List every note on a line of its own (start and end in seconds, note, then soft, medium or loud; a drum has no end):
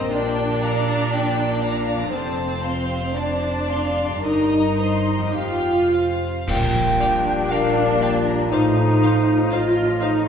0.00 2.08 A#2 medium
0.00 2.10 A#3 soft
0.00 0.10 D#4 soft
0.00 2.02 F4 soft
0.00 0.11 D#5 medium
0.00 0.11 A#5 soft
0.06 2.14 G4 soft
0.10 2.09 A#1 medium
0.10 2.09 A#2 medium
0.10 2.09 D4 loud
0.10 2.13 D5 medium
0.10 0.58 D5 medium
0.10 0.58 G5 medium
0.61 1.12 F5 medium
0.61 1.12 A#5 medium
1.11 1.62 D5 medium
1.11 1.62 G5 medium
1.61 2.12 F5 soft
1.61 2.13 A#5 medium
1.95 4.19 F2 soft
1.99 4.09 C4 soft
2.03 4.24 F4 soft
2.08 4.26 A4 soft
2.08 3.14 C5 medium
2.12 4.20 F1 medium
2.12 4.20 F2 medium
2.12 3.15 C4 medium
2.12 2.61 C5 soft
2.12 2.61 A5 medium
2.63 3.17 F5 soft
2.63 3.16 C6 medium
3.16 4.24 D4 medium
3.16 3.70 C5 medium
3.16 4.24 D5 medium
3.16 3.70 A5 medium
3.68 4.23 F5 soft
3.68 4.23 C6 soft
4.06 5.31 G2 medium
4.10 5.21 C4 soft
4.15 5.35 D#4 soft
4.19 5.37 A#4 soft
4.23 5.35 G1 medium
4.23 5.35 G2 medium
4.23 5.35 D#4 medium
4.23 4.75 A#4 soft
4.23 5.35 D#5 medium
4.23 4.75 A#5 soft
4.78 5.35 C5 soft
4.78 5.35 C6 soft
5.17 6.42 F2 medium
5.22 6.44 C4 soft
5.26 7.23 G4 soft
5.31 5.88 G4 soft
5.31 6.49 C5 soft
5.31 5.88 G5 soft
5.36 6.24 F1 soft
5.36 6.24 F2 soft
5.36 6.48 F4 medium
5.36 6.45 F5 medium
5.91 6.46 C5 soft
5.91 6.46 F5 soft
6.47 7.39 A#1 medium
6.47 8.56 A#2 medium
6.47 7.39 A#2 medium
6.47 8.47 G3 medium
6.47 10.28 F4 medium
6.47 6.55 D5 medium
6.47 6.55 F5 medium
6.47 7.53 G5 medium
6.47 6.56 G5 medium
6.47 concert bass drum medium
6.47 crash medium
6.73 10.28 F3 medium
6.99 8.56 D4 medium
6.99 8.48 D4 medium
6.99 7.08 D5 soft
6.99 7.07 F5 soft
6.99 7.09 G5 medium
7.24 8.55 G4 soft
7.50 8.40 A#1 medium
7.50 8.41 A#2 medium
7.50 8.56 A#4 medium
7.50 7.58 D5 medium
7.50 7.58 F5 medium
7.50 8.04 F5 medium
7.50 7.60 G5 soft
7.76 8.56 D5 soft
8.01 8.10 D5 medium
8.01 8.53 D5 medium
8.01 8.09 F5 medium
8.01 8.10 G5 medium
8.01 8.56 G5 medium
8.27 8.56 A#5 medium
8.51 9.40 A1 medium
8.51 10.28 A2 medium
8.51 9.41 A2 medium
8.51 10.28 F3 medium
8.51 9.52 D#4 medium
8.51 9.54 C5 medium
8.51 8.60 C5 medium
8.51 8.60 F5 medium
9.01 10.28 C4 soft
9.01 9.11 C5 medium
9.01 9.11 F5 medium
9.01 9.12 F5 medium
9.27 9.76 F4 soft
9.51 10.28 A1 medium
9.51 10.28 A2 medium
9.51 10.01 F4 medium
9.51 9.59 C5 medium
9.51 10.28 C5 medium
9.51 10.28 D#5 medium
9.51 9.59 F5 medium
9.51 9.61 F5 medium
9.77 10.28 F4 medium
10.01 10.26 D#4 medium
10.01 10.09 C5 medium
10.01 10.09 F5 medium
10.01 10.28 F5 soft
10.01 10.10 F5 medium